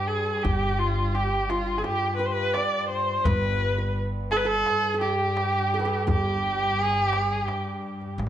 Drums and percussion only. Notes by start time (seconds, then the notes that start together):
0.10 tombak ka
0.45 tombak dum
1.15 tombak ka
1.50 tombak tek
1.84 tombak tek
2.37 tombak ka
2.54 tombak tek
2.91 tombak ka
3.25 tombak dum
3.96 tombak ka
4.31 tombak tek
4.66 tombak tek
5.19 tombak ka
5.37 tombak tek
5.72 tombak ka
6.08 tombak dum
6.43 tombak ka
6.78 tombak ka
7.13 tombak tek
7.31 tombak ka
7.48 tombak tek
8.01 tombak ka
8.19 tombak tek